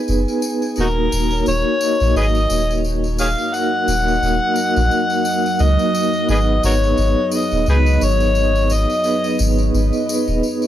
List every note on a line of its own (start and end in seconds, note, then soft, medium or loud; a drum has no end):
0.00 0.79 B3 medium
0.00 0.77 D#4 medium
0.00 0.79 G#4 medium
0.00 0.79 B4 loud
0.08 0.25 F#1 loud
0.08 tambourine medium
0.28 tambourine soft
0.42 tambourine medium
0.62 tambourine soft
0.76 1.08 D#1 loud
0.76 10.67 F#3 medium
0.76 1.26 A#3 medium
0.76 1.26 D#4 medium
0.76 1.27 F#4 medium
0.76 1.27 A#4 loud
0.76 10.67 D#5 medium
0.76 tambourine soft
0.80 0.86 D#4 medium
0.80 0.88 F#4 medium
0.80 1.44 A#4 medium
1.12 1.43 D#1 medium
1.12 tambourine medium
1.30 1.76 A#3 medium
1.30 1.77 D#4 medium
1.30 1.77 F#4 medium
1.30 1.77 C#5 medium
1.30 tambourine soft
1.46 1.64 D#1 loud
1.46 2.12 C#5 loud
1.46 tambourine medium
1.79 3.49 A#3 medium
1.79 3.49 D#4 medium
1.79 3.50 F#4 medium
1.79 3.50 D#5 medium
1.79 tambourine loud
2.00 2.14 A#1 loud
2.00 tambourine soft
2.15 2.46 G#1 medium
2.15 2.26 G#4 medium
2.15 2.24 B4 medium
2.15 2.81 D#5 loud
2.15 tambourine soft
2.35 tambourine soft
2.50 3.34 D#1 medium
2.50 tambourine medium
2.70 tambourine soft
2.84 tambourine medium
3.04 tambourine soft
3.18 3.28 G#4 medium
3.18 3.27 C#5 medium
3.18 3.56 F5 loud
3.18 tambourine medium
3.38 tambourine soft
3.52 4.02 A#3 medium
3.52 4.02 D#4 medium
3.52 4.02 F#4 medium
3.52 4.03 A#4 medium
3.52 5.64 F#5 loud
3.52 tambourine soft
3.88 4.18 D#1 medium
3.88 tambourine medium
4.06 4.52 A#3 medium
4.06 4.53 D#4 medium
4.06 4.53 F#4 medium
4.06 4.53 A#4 medium
4.06 tambourine soft
4.22 4.39 D#1 loud
4.22 tambourine soft
4.54 5.74 A#3 loud
4.54 5.75 D#4 medium
4.54 5.75 F#4 medium
4.54 5.76 A#4 loud
4.54 tambourine medium
4.76 4.89 A#1 loud
4.76 tambourine soft
4.91 tambourine soft
5.10 tambourine soft
5.25 tambourine medium
5.46 tambourine soft
5.59 5.77 C#2 loud
5.59 6.30 D#5 loud
5.59 tambourine soft
5.78 6.25 A#3 medium
5.78 6.25 D#4 medium
5.78 6.25 F#4 medium
5.78 6.25 D#5 medium
5.78 tambourine soft
5.95 tambourine medium
6.13 tambourine soft
6.27 6.60 G#1 loud
6.27 6.77 B3 medium
6.27 6.78 D#4 medium
6.27 6.78 G#4 medium
6.27 6.39 G#4 medium
6.27 6.78 B4 loud
6.27 6.38 B4 medium
6.27 6.62 D#5 loud
6.27 tambourine soft
6.63 6.94 G#1 medium
6.63 6.74 F#4 medium
6.63 6.72 A#4 medium
6.63 7.29 C#5 loud
6.63 tambourine medium
6.81 7.28 B3 medium
6.81 7.28 D#4 medium
6.81 7.29 G#4 medium
6.81 7.29 C#5 medium
6.81 tambourine soft
6.97 7.15 G#1 loud
6.97 tambourine soft
7.30 9.00 B3 medium
7.30 9.00 D#4 medium
7.30 9.01 G#4 medium
7.30 9.01 D#5 medium
7.30 tambourine loud
7.34 7.65 D#5 medium
7.51 7.65 D#1 loud
7.51 tambourine soft
7.66 7.98 C#2 medium
7.66 7.76 D#4 medium
7.66 7.76 G#4 medium
7.66 8.05 B4 loud
7.66 tambourine soft
7.86 tambourine soft
8.01 8.86 G#1 medium
8.01 8.74 C#5 loud
8.01 tambourine medium
8.20 tambourine soft
8.35 tambourine medium
8.55 tambourine soft
8.70 9.40 D#5 loud
8.70 tambourine medium
8.90 tambourine soft
9.04 9.53 B3 medium
9.04 9.54 D#4 medium
9.04 9.54 G#4 medium
9.04 9.54 B4 medium
9.04 tambourine soft
9.24 tambourine soft
9.39 9.70 G#1 medium
9.39 tambourine medium
9.58 10.04 B3 medium
9.58 10.04 D#4 medium
9.58 10.05 G#4 medium
9.58 10.05 B4 medium
9.58 tambourine soft
9.74 9.91 G#1 loud
9.74 tambourine medium
9.93 tambourine soft
10.06 10.67 B3 loud
10.06 10.67 D#4 medium
10.06 10.67 G#4 medium
10.06 10.67 B4 loud
10.06 tambourine loud
10.28 10.41 D#1 loud
10.28 tambourine soft
10.43 tambourine soft
10.62 tambourine soft